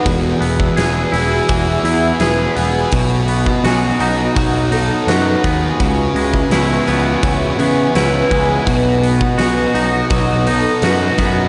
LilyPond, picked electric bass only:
\new Staff \with { instrumentName = "Picked electric bass" } { \clef bass \time 4/4 \key b \major \tempo 4 = 84 e,,8 e,,8 e,,8 e,,8 e,,8 e,8 e,,8 e,,8 | b,,4 b,,8 b,,8 b,,4 fis,8 dis,8 | cis,8 cis,8 cis,8 cis,8 cis,8 cis8 cis,8 cis,8 | b,,4 b,,8 b,,8 b,,4 fis,8 fis,8 | }